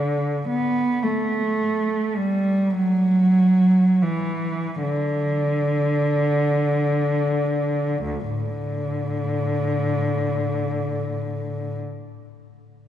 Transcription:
0, 0, Header, 1, 2, 480
1, 0, Start_track
1, 0, Key_signature, 2, "major"
1, 0, Tempo, 1136364
1, 1161, Time_signature, 6, 3, 24, 8
1, 1161, Tempo, 1271186
1, 1641, Tempo, 1719198
1, 2121, Tempo, 2281369
1, 2601, Tempo, 1754386
1, 3561, Tempo, 1834862
1, 3915, End_track
2, 0, Start_track
2, 0, Title_t, "Cello"
2, 0, Program_c, 0, 42
2, 0, Note_on_c, 0, 50, 49
2, 181, Note_off_c, 0, 50, 0
2, 202, Note_on_c, 0, 59, 61
2, 434, Note_on_c, 0, 57, 53
2, 442, Note_off_c, 0, 59, 0
2, 913, Note_on_c, 0, 55, 51
2, 914, Note_off_c, 0, 57, 0
2, 1158, Note_off_c, 0, 55, 0
2, 1162, Note_on_c, 0, 54, 62
2, 1632, Note_off_c, 0, 54, 0
2, 1641, Note_on_c, 0, 52, 59
2, 1854, Note_off_c, 0, 52, 0
2, 1866, Note_on_c, 0, 50, 57
2, 2604, Note_on_c, 0, 38, 37
2, 2607, Note_off_c, 0, 50, 0
2, 2675, Note_off_c, 0, 38, 0
2, 2675, Note_on_c, 0, 50, 39
2, 2677, Note_on_c, 0, 45, 32
2, 3624, Note_off_c, 0, 45, 0
2, 3626, Note_off_c, 0, 50, 0
2, 3915, End_track
0, 0, End_of_file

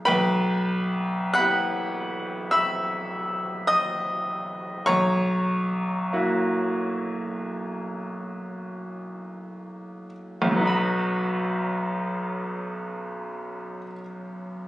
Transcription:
0, 0, Header, 1, 2, 480
1, 0, Start_track
1, 0, Key_signature, 5, "major"
1, 0, Tempo, 840336
1, 45, Time_signature, 12, 3, 24, 8
1, 1011, Tempo, 779221
1, 2931, Tempo, 842697
1, 4371, Tempo, 964630
1, 4851, Tempo, 1104972
1, 5331, Tempo, 1212121
1, 5811, Tempo, 1052632
1, 6291, Tempo, 1005025
1, 7690, End_track
2, 0, Start_track
2, 0, Title_t, "Grand piano"
2, 0, Program_c, 0, 0
2, 0, Control_c, 0, 64, 127
2, 30, Note_on_c, 0, 83, 127
2, 37, Note_on_c, 0, 79, 107
2, 38, Note_on_c, 0, 71, 98
2, 47, Note_on_c, 0, 35, 101
2, 57, Control_c, 0, 64, 0
2, 150, Control_c, 0, 64, 127
2, 748, Note_off_c, 0, 79, 0
2, 749, Note_off_c, 0, 71, 0
2, 754, Note_off_c, 0, 35, 0
2, 763, Note_on_c, 0, 90, 124
2, 764, Note_off_c, 0, 83, 0
2, 770, Note_on_c, 0, 78, 106
2, 773, Note_on_c, 0, 83, 113
2, 778, Note_on_c, 0, 59, 70
2, 783, Note_on_c, 0, 67, 75
2, 784, Note_on_c, 0, 64, 68
2, 1456, Note_off_c, 0, 78, 0
2, 1458, Note_off_c, 0, 83, 0
2, 1468, Note_on_c, 0, 88, 124
2, 1474, Note_on_c, 0, 76, 83
2, 1477, Note_off_c, 0, 90, 0
2, 1477, Note_on_c, 0, 83, 85
2, 2165, Note_off_c, 0, 76, 0
2, 2166, Note_off_c, 0, 83, 0
2, 2184, Note_on_c, 0, 87, 127
2, 2186, Note_off_c, 0, 88, 0
2, 2187, Note_on_c, 0, 75, 105
2, 2903, Note_off_c, 0, 75, 0
2, 2908, Note_off_c, 0, 59, 0
2, 2911, Note_off_c, 0, 64, 0
2, 2911, Note_off_c, 0, 67, 0
2, 2915, Note_on_c, 0, 85, 127
2, 2921, Note_on_c, 0, 73, 100
2, 2922, Note_on_c, 0, 82, 91
2, 2925, Note_off_c, 0, 87, 0
2, 2933, Note_on_c, 0, 35, 93
2, 2941, Control_c, 0, 64, 0
2, 3044, Control_c, 0, 64, 127
2, 3617, Note_off_c, 0, 35, 0
2, 3639, Note_on_c, 0, 58, 65
2, 3644, Note_on_c, 0, 64, 66
2, 3644, Note_on_c, 0, 66, 71
2, 5560, Note_off_c, 0, 73, 0
2, 5560, Note_off_c, 0, 82, 0
2, 5574, Note_off_c, 0, 85, 0
2, 5700, Note_on_c, 0, 35, 89
2, 5722, Note_on_c, 0, 42, 69
2, 5737, Note_on_c, 0, 54, 71
2, 5758, Note_on_c, 0, 59, 67
2, 5773, Note_on_c, 0, 63, 69
2, 5788, Note_off_c, 0, 66, 0
2, 5794, Note_on_c, 0, 66, 66
2, 5796, Note_off_c, 0, 58, 0
2, 5797, Note_off_c, 0, 64, 0
2, 5801, Note_on_c, 0, 83, 86
2, 5820, Control_c, 0, 64, 0
2, 5924, Control_c, 0, 64, 127
2, 7252, Note_off_c, 0, 35, 0
2, 7278, Note_off_c, 0, 42, 0
2, 7297, Note_off_c, 0, 54, 0
2, 7322, Note_off_c, 0, 59, 0
2, 7340, Note_off_c, 0, 63, 0
2, 7365, Note_off_c, 0, 66, 0
2, 7374, Note_off_c, 0, 83, 0
2, 7690, End_track
0, 0, End_of_file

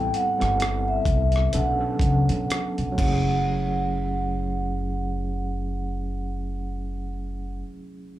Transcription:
0, 0, Header, 1, 5, 480
1, 0, Start_track
1, 0, Key_signature, 3, "minor"
1, 0, Tempo, 940439
1, 1270, Tempo, 1005025
1, 1743, Time_signature, 4, 2, 24, 8
1, 3993, End_track
2, 0, Start_track
2, 0, Title_t, "Vibraphone"
2, 0, Program_c, 0, 11
2, 0, Note_on_c, 0, 79, 84
2, 55, Note_off_c, 0, 79, 0
2, 76, Note_on_c, 0, 78, 90
2, 450, Note_on_c, 0, 76, 79
2, 451, Note_off_c, 0, 78, 0
2, 795, Note_on_c, 0, 78, 71
2, 796, Note_off_c, 0, 76, 0
2, 1493, Note_off_c, 0, 78, 0
2, 1510, Note_on_c, 0, 78, 65
2, 3723, Note_off_c, 0, 78, 0
2, 3993, End_track
3, 0, Start_track
3, 0, Title_t, "Tine electric piano"
3, 0, Program_c, 1, 4
3, 0, Control_c, 1, 64, 127
3, 0, Note_on_c, 1, 55, 61
3, 0, Note_on_c, 1, 59, 57
3, 0, Note_on_c, 1, 60, 60
3, 0, Note_on_c, 1, 64, 58
3, 0, Note_on_c, 1, 69, 75
3, 147, Note_off_c, 1, 55, 0
3, 149, Note_off_c, 1, 59, 0
3, 152, Note_off_c, 1, 60, 0
3, 153, Note_off_c, 1, 64, 0
3, 154, Note_off_c, 1, 69, 0
3, 193, Note_on_c, 1, 55, 57
3, 197, Note_on_c, 1, 59, 60
3, 200, Note_on_c, 1, 60, 59
3, 204, Note_on_c, 1, 64, 60
3, 205, Note_on_c, 1, 69, 70
3, 771, Note_off_c, 1, 59, 0
3, 774, Note_on_c, 1, 54, 64
3, 775, Note_off_c, 1, 55, 0
3, 777, Note_on_c, 1, 59, 60
3, 778, Note_off_c, 1, 60, 0
3, 780, Note_off_c, 1, 64, 0
3, 781, Note_off_c, 1, 69, 0
3, 782, Note_on_c, 1, 61, 61
3, 783, Note_on_c, 1, 62, 63
3, 785, Control_c, 1, 64, 0
3, 787, Note_on_c, 1, 69, 76
3, 888, Control_c, 1, 64, 127
3, 897, Note_off_c, 1, 54, 0
3, 898, Note_off_c, 1, 59, 0
3, 901, Note_off_c, 1, 61, 0
3, 902, Note_off_c, 1, 62, 0
3, 903, Note_off_c, 1, 69, 0
3, 909, Note_on_c, 1, 54, 61
3, 913, Note_on_c, 1, 59, 56
3, 917, Note_on_c, 1, 61, 54
3, 919, Note_on_c, 1, 62, 56
3, 922, Note_on_c, 1, 69, 65
3, 1470, Note_off_c, 1, 54, 0
3, 1476, Note_on_c, 1, 54, 69
3, 1490, Note_on_c, 1, 57, 58
3, 1496, Note_off_c, 1, 61, 0
3, 1502, Note_off_c, 1, 59, 0
3, 1502, Note_on_c, 1, 61, 56
3, 1505, Note_off_c, 1, 62, 0
3, 1506, Note_off_c, 1, 69, 0
3, 1510, Control_c, 1, 64, 0
3, 1514, Note_on_c, 1, 64, 51
3, 1528, Note_on_c, 1, 68, 67
3, 1580, Control_c, 1, 64, 127
3, 1750, Control_c, 1, 64, 0
3, 1838, Control_c, 1, 64, 127
3, 3688, Note_off_c, 1, 54, 0
3, 3703, Note_off_c, 1, 57, 0
3, 3715, Note_off_c, 1, 61, 0
3, 3727, Note_off_c, 1, 64, 0
3, 3741, Note_off_c, 1, 68, 0
3, 3993, End_track
4, 0, Start_track
4, 0, Title_t, "Upright bass"
4, 0, Program_c, 2, 32
4, 211, Note_on_c, 2, 31, 73
4, 501, Note_off_c, 2, 31, 0
4, 541, Note_on_c, 2, 36, 75
4, 749, Note_off_c, 2, 36, 0
4, 789, Note_on_c, 2, 35, 83
4, 997, Note_off_c, 2, 35, 0
4, 1022, Note_on_c, 2, 37, 70
4, 1143, Note_off_c, 2, 37, 0
4, 1171, Note_on_c, 2, 47, 71
4, 1260, Note_off_c, 2, 47, 0
4, 1411, Note_on_c, 2, 35, 64
4, 1496, Note_off_c, 2, 35, 0
4, 1507, Note_on_c, 2, 30, 80
4, 3719, Note_off_c, 2, 30, 0
4, 3993, End_track
5, 0, Start_track
5, 0, Title_t, "Drums"
5, 71, Note_on_c, 9, 42, 49
5, 122, Note_off_c, 9, 42, 0
5, 211, Note_on_c, 9, 42, 41
5, 215, Note_on_c, 9, 37, 28
5, 262, Note_off_c, 9, 42, 0
5, 266, Note_off_c, 9, 37, 0
5, 306, Note_on_c, 9, 42, 63
5, 318, Note_on_c, 9, 37, 95
5, 357, Note_off_c, 9, 42, 0
5, 369, Note_off_c, 9, 37, 0
5, 538, Note_on_c, 9, 36, 82
5, 542, Note_on_c, 9, 42, 51
5, 589, Note_off_c, 9, 36, 0
5, 593, Note_off_c, 9, 42, 0
5, 673, Note_on_c, 9, 42, 33
5, 693, Note_on_c, 9, 37, 31
5, 724, Note_off_c, 9, 42, 0
5, 744, Note_off_c, 9, 37, 0
5, 780, Note_on_c, 9, 42, 75
5, 831, Note_off_c, 9, 42, 0
5, 1018, Note_on_c, 9, 36, 65
5, 1027, Note_on_c, 9, 42, 57
5, 1069, Note_off_c, 9, 36, 0
5, 1078, Note_off_c, 9, 42, 0
5, 1170, Note_on_c, 9, 42, 47
5, 1221, Note_off_c, 9, 42, 0
5, 1278, Note_on_c, 9, 42, 74
5, 1284, Note_on_c, 9, 37, 89
5, 1325, Note_off_c, 9, 42, 0
5, 1331, Note_off_c, 9, 37, 0
5, 1410, Note_on_c, 9, 42, 32
5, 1457, Note_off_c, 9, 42, 0
5, 1505, Note_on_c, 9, 36, 81
5, 1507, Note_on_c, 9, 49, 63
5, 1553, Note_off_c, 9, 36, 0
5, 1555, Note_off_c, 9, 49, 0
5, 3993, End_track
0, 0, End_of_file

